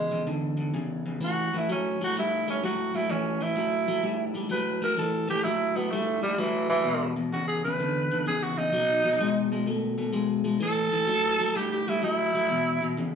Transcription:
0.00 0.27 G#3 medium
0.11 0.25 E2 medium
0.11 0.26 C#3 medium
0.27 0.56 E2 medium
0.27 0.56 D3 loud
0.57 0.72 E2 medium
0.57 0.72 D3 medium
0.74 1.02 E2 medium
0.74 1.03 C#3 medium
1.06 1.19 E2 medium
1.06 1.20 C#3 medium
1.21 1.49 A2 medium
1.21 1.50 E3 medium
1.21 1.59 F#4 medium
1.53 1.67 A2 medium
1.53 1.67 E3 medium
1.53 1.70 E4 medium
1.69 1.97 A2 medium
1.69 1.97 F#3 loud
1.69 2.01 C#4 medium
2.01 2.14 A2 medium
2.01 2.14 F#3 medium
2.01 2.17 F#4 loud
2.16 2.44 A2 medium
2.16 2.45 G3 loud
2.16 2.48 E4 medium
2.48 2.61 A2 medium
2.48 2.61 G3 medium
2.48 2.63 C#4 medium
2.63 2.91 A2 medium
2.63 2.91 F#3 medium
2.63 2.97 F#4 medium
2.95 3.08 A2 medium
2.95 3.08 F#3 medium
2.95 3.13 E4 loud
3.09 3.38 A2 medium
3.09 3.38 E3 medium
3.09 3.44 C#4 medium
3.40 3.54 A2 medium
3.40 3.55 E3 medium
3.40 4.33 E4 loud
3.56 3.85 A2 medium
3.56 3.85 F#3 medium
3.88 4.02 A2 medium
3.88 4.02 F#3 loud
4.03 4.32 A2 medium
4.03 4.32 G3 medium
4.34 4.48 A2 medium
4.34 4.49 G3 medium
4.49 4.78 A2 medium
4.49 4.78 F#3 medium
4.49 4.82 B4 loud
4.81 4.95 A2 medium
4.81 4.96 F#3 medium
4.81 5.01 A#4 loud
4.97 5.26 A2 medium
4.97 5.26 E3 medium
4.97 5.29 A4 medium
5.28 5.42 A2 medium
5.28 5.42 E3 medium
5.28 5.45 G4 loud
5.44 5.73 A2 medium
5.44 5.73 F#3 medium
5.44 5.78 E4 medium
5.76 5.90 A2 medium
5.76 5.90 F#3 medium
5.76 5.93 B3 medium
5.91 6.20 A2 medium
5.91 6.21 G3 medium
5.91 6.22 A3 medium
6.22 6.36 A2 medium
6.22 6.41 G3 medium
6.22 6.37 G3 medium
6.38 6.67 A2 medium
6.38 6.69 E3 loud
6.38 6.67 F#3 loud
6.69 6.84 A2 medium
6.69 7.15 E3 loud
6.69 6.84 F#3 medium
6.84 7.13 E2 medium
6.84 7.13 B2 medium
7.16 7.30 E2 medium
7.16 7.30 B2 medium
7.33 7.61 E2 medium
7.33 7.61 C#3 medium
7.33 7.47 F#4 medium
7.48 7.63 G#4 loud
7.64 7.78 E2 medium
7.64 7.78 C#3 medium
7.64 8.25 B4 loud
7.80 8.08 E2 medium
7.80 8.08 D3 medium
8.11 8.25 E2 medium
8.11 8.25 D3 medium
8.26 8.55 E2 medium
8.26 8.55 C#3 medium
8.26 8.44 G#4 medium
8.43 8.59 F#4 medium
8.58 8.71 E2 medium
8.58 8.72 C#3 medium
8.58 9.49 D#4 loud
8.73 9.01 B2 medium
8.73 9.01 F#3 medium
9.05 9.18 B2 medium
9.05 9.19 F#3 medium
9.20 9.49 B2 medium
9.20 9.49 G#3 medium
9.52 9.65 B2 medium
9.52 9.66 G#3 medium
9.66 9.95 B2 medium
9.66 9.96 A3 medium
9.98 10.11 B2 medium
9.98 10.12 A3 medium
10.13 10.42 B2 medium
10.13 10.42 G#3 medium
10.44 10.59 B2 medium
10.44 10.59 G#3 medium
10.60 10.89 A2 medium
10.60 10.89 E3 medium
10.60 11.58 A4 loud
10.92 11.06 A2 medium
10.92 11.06 E3 medium
11.07 11.36 A2 medium
11.07 11.36 F#3 loud
11.39 11.53 A2 medium
11.39 11.53 F#3 loud
11.55 11.83 A2 medium
11.55 11.84 G3 loud
11.55 11.71 G4 loud
11.72 11.90 G4 medium
11.87 12.01 A2 medium
11.87 12.01 G3 medium
11.87 12.03 E4 loud
12.02 12.30 A2 medium
12.02 12.31 F#3 medium
12.02 12.94 E4 loud
12.35 12.48 A2 medium
12.35 12.48 F#3 medium
12.50 12.78 E2 medium
12.50 12.78 B2 loud
12.82 12.95 E2 medium
12.82 12.95 B2 medium
12.97 13.15 E2 medium
12.97 13.15 C#3 medium

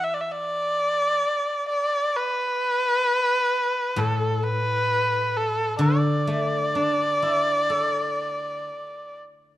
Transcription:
0.00 1.22 E3 medium
0.00 0.16 E5 medium
0.14 0.22 D5 medium
0.20 0.33 E5 medium
0.31 1.68 D5 medium
1.69 2.18 D5 medium
2.16 4.00 B4 medium
3.96 5.79 A2 medium
3.96 4.45 A4 medium
4.43 5.38 B4 medium
5.36 5.81 A4 medium
5.79 8.68 D3 medium
5.79 9.17 D5 medium
6.27 8.19 A3 soft
6.75 8.69 D4 soft
7.22 9.21 E4 soft
7.70 9.57 A4 soft

